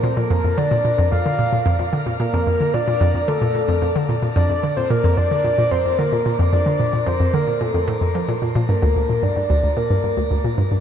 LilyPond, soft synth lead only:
\new Staff \with { instrumentName = "Soft synth lead" } { \time 4/4 \key bes \major \tempo 4 = 111 c''16 bes'8. d''4 f''4. r8 | bes'4 d''4 a'4. r8 | d''8. c''16 bes'8 d''8 d''8 c''8 bes'8. r16 | d''4 c''8 bes'8 a'4 r4 |
bes'4 d''4 bes'4. r8 | }